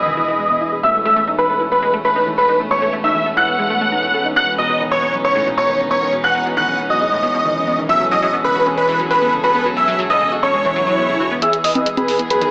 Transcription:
Already playing: analog synth bass E1, string section E3 E4 G#4 B4, supersaw synth D#5, grand piano D#6
0.06 synth pluck D#3
0.17 synth pluck E3
0.28 synth pluck E3
0.39 synth pluck G#3
0.50 synth pluck B2
0.61 synth pluck E4
0.72 synth pluck G#3
0.83 analog synth bass E1, string section A3 B3 C#4, synth pluck A3, supersaw synth E5, grand piano E6
0.94 synth pluck A3
1.05 synth pluck A3, supersaw synth E5, grand piano E6
1.16 synth pluck A3
1.28 synth pluck D#4
1.38 synth pluck E3, supersaw synth B4, grand piano B5
1.50 synth pluck A4
1.61 synth pluck E4
1.72 synth pluck B3, supersaw synth B4, grand piano B5
1.83 synth pluck G#3
1.94 synth pluck A3
2.05 synth pluck A3, supersaw synth B4, grand piano B5
2.16 synth pluck D#4
2.27 synth pluck E3
2.38 synth pluck A4, supersaw synth B4, grand piano B5
2.49 synth pluck D#4
2.60 synth pluck A3
2.71 synth pluck A3, supersaw synth C#5, grand piano C#6
2.82 synth pluck A3
2.93 synth pluck A3
3.04 synth pluck D#4, supersaw synth E5, grand piano E6
3.15 synth pluck E3
3.26 synth pluck A4
3.37 synth pluck E4, supersaw synth F#5, grand piano F#6
3.48 synth pluck B3
3.59 synth pluck G#3
3.70 synth pluck A3
3.81 synth pluck A3
3.92 synth pluck D#4
4.03 synth pluck E3
4.14 synth pluck A4
4.25 synth pluck D#4
4.36 analog synth bass E1, synth pluck B2, string section E3 D#4, supersaw synth F#5, grand piano F#6
4.47 synth pluck B2
4.58 synth pluck B2, supersaw synth D#5, grand piano D#6
4.69 synth pluck B2
4.80 synth pluck D#3
4.91 synth pluck F#2, supersaw synth C#5, grand piano C#6
5.03 synth pluck B3
5.14 synth pluck F#3
5.25 synth pluck C#3, supersaw synth C#5, grand piano C#6
5.36 synth pluck A2
5.47 synth pluck B2
5.58 synth pluck B2, supersaw synth C#5, grand piano C#6
5.69 synth pluck D#3
5.80 synth pluck F#2
5.91 synth pluck B3, supersaw synth C#5, grand piano C#6
6.02 synth pluck D#3
6.13 synth pluck B2
6.24 synth pluck B2, supersaw synth F#5, grand piano F#6
6.35 synth pluck B2
6.46 synth pluck B2
6.57 synth pluck D#3, supersaw synth F#5, grand piano F#6
6.68 synth pluck F#2
6.79 synth pluck B3
6.90 synth pluck F#3, supersaw synth D#5, grand piano D#6
7.01 synth pluck C#3
7.12 synth pluck A2
7.23 synth pluck B2
7.34 synth pluck B2
7.45 synth pluck D#3
7.56 synth pluck F#2
7.67 synth pluck B3
7.78 synth pluck D#3
7.89 analog synth bass E1, synth pluck F#3, string section G#4 A4, supersaw synth E5, grand piano E6
8.00 synth pluck F#3
8.11 synth pluck F#3, supersaw synth D#5, grand piano D#6
8.22 synth pluck F#3
8.33 synth pluck B3
8.44 synth pluck C#3, supersaw synth B4, grand piano B5
8.55 synth pluck F#4
8.66 synth pluck C#4
8.77 synth pluck G#3, supersaw synth B4, grand piano B5
8.89 synth pluck E3
9.00 synth pluck F#3
9.11 synth pluck F#3, supersaw synth B4, grand piano B5
9.22 synth pluck B3
9.33 synth pluck C#3
9.44 synth pluck F#4, supersaw synth B4, grand piano B5
9.55 synth pluck B3
9.66 synth pluck F#3
9.77 synth pluck F#3, supersaw synth E5, grand piano E6
9.88 synth pluck F#3
9.99 synth pluck F#3
10.10 synth pluck B3, supersaw synth D#5, grand piano D#6
10.21 synth pluck C#3
10.32 synth pluck F#4
10.43 synth pluck C#4, supersaw synth C#5, grand piano C#6
10.54 synth pluck G#3, swell
10.65 synth pluck E3
10.76 synth pluck F#3
10.87 synth pluck F#3
10.98 synth pluck B3
11.09 synth pluck C#3
11.20 synth pluck F#4
11.31 synth pluck B3
11.42 string section E2 E3 B3 G#4, synth pluck E3, supersaw synth G#4 E5, grand piano E6, closed hi-hat, riser
11.53 synth pluck E3, closed hi-hat
11.64 synth pluck E3, supersaw synth B4 D#5, grand piano D#6, open hi-hat
11.75 synth pluck E3, closed hi-hat, high conga
11.86 synth pluck G#3, closed hi-hat
11.97 synth pluck B2, supersaw synth G#4 B4, grand piano B5, closed hi-hat, high conga
12.08 synth pluck E4, open hi-hat
12.19 synth pluck B3, closed hi-hat
12.30 synth pluck F#3, supersaw synth G#4 B4, grand piano B5, closed hi-hat
12.41 synth pluck D#3, closed hi-hat

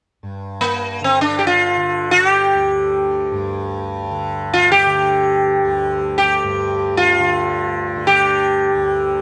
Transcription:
0.23 tanpura G2
0.61 sitar A#3
1.01 tanpura D3, sitar C4
1.21 sitar D4
1.39 sitar G4
1.47 sitar F4
1.77 tanpura D3
2.11 sitar F#4
2.29 sitar G4
2.54 tanpura D2
3.32 tanpura G2
4.11 tanpura D3
4.54 sitar F4
4.72 sitar G4
4.87 tanpura D3
5.65 tanpura D2
6.18 sitar G4
6.43 tanpura G2
6.97 sitar F4
7.20 tanpura D3
7.96 tanpura D3
8.07 sitar G4
8.75 tanpura D2

